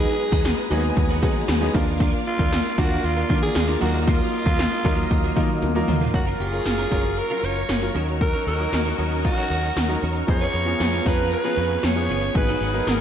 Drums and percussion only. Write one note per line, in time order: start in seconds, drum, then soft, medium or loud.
0.20 closed hi-hat medium
0.32 kick loud
0.45 snare loud
0.45 closed hi-hat medium
0.45 tambourine medium
0.71 closed hi-hat medium
0.96 kick loud
0.96 closed hi-hat loud
1.23 kick loud
1.23 closed hi-hat medium
1.48 snare loud
1.48 closed hi-hat medium
1.48 tambourine medium
1.74 kick loud
1.74 open hi-hat medium
2.00 kick loud
2.00 closed hi-hat medium
2.26 closed hi-hat medium
2.39 kick loud
2.52 snare loud
2.52 closed hi-hat medium
2.52 tambourine medium
2.78 kick loud
2.78 closed hi-hat medium
3.04 closed hi-hat loud
3.30 kick loud
3.30 closed hi-hat medium
3.55 snare loud
3.55 closed hi-hat loud
3.55 tambourine medium
3.82 open hi-hat medium
4.08 kick loud
4.08 closed hi-hat loud
4.34 closed hi-hat medium
4.46 kick loud
4.59 snare loud
4.59 closed hi-hat medium
4.59 tambourine medium
4.72 closed hi-hat medium
4.85 kick loud
4.85 closed hi-hat medium
4.98 closed hi-hat medium
5.11 kick medium
5.11 closed hi-hat loud
5.36 kick loud
5.36 closed hi-hat medium
5.62 closed hi-hat loud
5.62 high tom medium
5.75 mid tom medium
5.88 mid tom loud
5.88 open hi-hat medium
6.01 floor tom medium
6.14 kick loud
6.14 closed hi-hat medium
6.27 closed hi-hat medium
6.40 closed hi-hat medium
6.53 closed hi-hat soft
6.65 snare loud
6.65 closed hi-hat medium
6.79 closed hi-hat soft
6.92 kick medium
6.92 closed hi-hat medium
7.05 closed hi-hat medium
7.17 closed hi-hat medium
7.30 closed hi-hat soft
7.44 closed hi-hat medium
7.56 closed hi-hat soft
7.69 snare loud
7.69 closed hi-hat medium
7.83 closed hi-hat soft
7.95 closed hi-hat medium
8.08 closed hi-hat medium
8.21 kick loud
8.21 closed hi-hat medium
8.35 closed hi-hat medium
8.48 closed hi-hat medium
8.60 closed hi-hat medium
8.73 snare loud
8.73 closed hi-hat medium
8.86 closed hi-hat soft
8.99 closed hi-hat medium
9.12 closed hi-hat medium
9.25 kick medium
9.25 closed hi-hat medium
9.38 closed hi-hat soft
9.51 closed hi-hat medium
9.64 closed hi-hat soft
9.77 snare loud
9.77 closed hi-hat medium
9.90 closed hi-hat soft
10.03 closed hi-hat medium
10.16 closed hi-hat medium
10.28 kick loud
10.28 closed hi-hat medium
10.41 closed hi-hat medium
10.55 closed hi-hat medium
10.67 closed hi-hat medium
10.80 snare loud
10.80 closed hi-hat medium
10.93 closed hi-hat soft
11.06 kick medium
11.06 closed hi-hat medium
11.19 closed hi-hat medium
11.32 closed hi-hat medium
11.45 closed hi-hat soft
11.58 closed hi-hat medium
11.71 closed hi-hat soft
11.83 snare loud
11.83 closed hi-hat medium
11.97 closed hi-hat soft
12.10 closed hi-hat medium
12.22 closed hi-hat medium
12.35 kick loud
12.35 closed hi-hat medium
12.48 closed hi-hat medium
12.61 closed hi-hat medium
12.74 closed hi-hat medium
12.87 snare loud
12.87 closed hi-hat medium